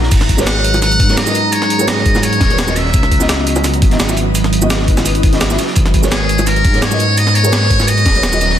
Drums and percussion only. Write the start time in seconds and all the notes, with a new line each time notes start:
0.03 snare
0.11 kick, closed hi-hat, crash, shaker
0.21 snare, closed hi-hat
0.29 kick, closed hi-hat
0.38 snare, high bongo, shaker
0.47 snare, closed hi-hat, shaker
0.64 closed hi-hat
0.74 closed hi-hat, high bongo, shaker
0.82 snare, closed hi-hat, shaker
0.91 closed hi-hat
1.00 kick, closed hi-hat
1.09 snare, closed hi-hat
1.17 snare, closed hi-hat, open hi-hat, shaker
1.27 high bongo, shaker
1.35 closed hi-hat, shaker
1.52 closed hi-hat, shaker
1.62 snare, closed hi-hat
1.70 closed hi-hat
1.80 high bongo, shaker
1.88 snare, closed hi-hat, shaker
1.98 snare
2.05 kick, closed hi-hat
2.15 snare, high bongo, shaker
2.23 closed hi-hat, shaker
2.33 closed hi-hat
2.40 kick, snare, closed hi-hat
2.49 snare, closed hi-hat
2.59 snare, closed hi-hat, shaker
2.68 snare, high bongo, shaker
2.76 snare, closed hi-hat, shaker
2.86 snare
2.94 kick, closed hi-hat, shaker
3.03 snare, closed hi-hat
3.11 kick, closed hi-hat
3.20 snare, high bongo, shaker
3.29 snare, closed hi-hat, shaker
3.47 closed hi-hat
3.56 closed hi-hat, high bongo, shaker
3.64 snare, closed hi-hat, shaker
3.74 closed hi-hat
3.82 kick, closed hi-hat
3.91 snare, closed hi-hat
4.00 snare, closed hi-hat, open hi-hat, shaker
4.09 high bongo, shaker
4.17 closed hi-hat, shaker
4.35 closed hi-hat, shaker
4.44 snare, closed hi-hat
4.53 closed hi-hat
4.62 high bongo, shaker
4.70 snare, closed hi-hat, shaker
4.79 snare
4.88 kick, closed hi-hat
4.97 snare, closed hi-hat, high bongo, shaker
5.06 closed hi-hat, shaker
5.15 closed hi-hat
5.23 kick, closed hi-hat
5.33 snare, closed hi-hat
5.41 snare, closed hi-hat, shaker
5.50 snare, high bongo, shaker
5.59 snare, closed hi-hat, shaker
5.67 snare
5.76 kick, closed hi-hat, shaker
5.86 snare, closed hi-hat
5.94 kick, closed hi-hat
6.03 snare, high bongo, shaker
6.11 snare, closed hi-hat, shaker
6.29 closed hi-hat
6.38 closed hi-hat, high bongo, shaker
6.47 snare, closed hi-hat, shaker
6.56 closed hi-hat
6.64 kick, closed hi-hat
6.74 snare, closed hi-hat
6.82 snare, closed hi-hat, open hi-hat, shaker
6.91 high bongo, shaker
6.99 closed hi-hat, shaker
7.18 closed hi-hat, shaker
7.27 snare, closed hi-hat
7.35 closed hi-hat
7.44 high bongo, shaker
7.52 snare, closed hi-hat, shaker
7.63 snare
7.70 kick, closed hi-hat
7.80 snare, high bongo, shaker
7.87 closed hi-hat, shaker
7.97 closed hi-hat
8.05 kick, snare, closed hi-hat
8.15 snare, closed hi-hat
8.23 snare, closed hi-hat, shaker
8.33 snare, high bongo, shaker
8.41 snare, closed hi-hat, shaker
8.50 snare